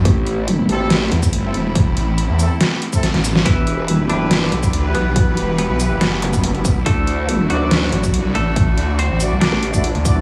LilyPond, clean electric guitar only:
\new Staff \with { instrumentName = "Clean electric guitar" } { \time 4/4 \key e \minor \tempo 4 = 141 r1 | r1 | <e e'>4. <d d'>2 <b, b>8~ | <b, b>4 <b, b>8 r8 <b, b>2 |
<a a'>4. <fis fis'>2 <a a'>8~ | <a a'>4 <c' c''>8 r8 <d' d''>2 | }